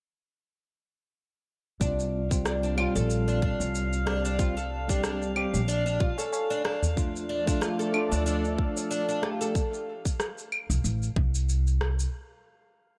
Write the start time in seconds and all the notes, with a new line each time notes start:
1.80 C2 G3 C4 D4 F4 F5, kick, shaker
1.99 shaker
2.30 G3 C4 F4, kick, shaker
2.45 D4, cross-stick, shaker
2.63 D4, shaker
2.76 G3 C4 F4, tabla tin, claves
2.80 F4
2.96 A#1 A4, tabla tin, shaker
3.10 shaker
3.28 D4, shaker
3.42 D4, kick, tabla tin
3.60 C2, tabla tin, shaker
3.75 shaker
3.93 shaker
4.06 G3 C4 D4 G4, cross-stick
4.25 D4, shaker
4.38 G3 C4 F4, kick, shaker
4.57 A4, shaker
4.88 G3 C4 D4 G4, kick, shaker
5.03 D4, cross-stick, shaker
5.22 shaker
5.35 G3 C4 G4, tabla tin, claves
5.54 A#1, tabla tin, shaker
5.68 D4, shaker
5.86 D4, shaker
6.00 F4, kick
6.18 A4, tabla na, shaker
6.33 tabla na, shaker
6.50 D4, shaker
6.65 D4, cross-stick
6.83 tabla ge, shaker
6.96 F3 A3 D4 F4, kick, shaker
7.12 A3, shaker
7.29 D4
7.46 A3 D4 F4, kick, shaker
7.52 D5
7.61 F4, cross-stick, shaker
7.79 A4, shaker
7.89 A3 A4
7.94 D4 F4, tabla tin, claves
8.12 D2 D4, tabla tin, shaker
8.26 D4, shaker
8.45 shaker
8.58 kick
8.77 tabla tin, shaker
8.91 D4, shaker
9.09 D4, shaker
9.22 A3 D4 F4 G4, cross-stick
9.41 A4, shaker
9.55 kick, shaker
9.74 shaker
10.05 kick, shaker
10.20 cross-stick, shaker
10.38 shaker
10.52 claves
10.70 C2, shaker
10.84 A1, shaker
11.03 shaker
11.16 C2, kick
11.35 shaker
11.49 shaker
11.67 shaker
11.81 cross-stick
12.00 shaker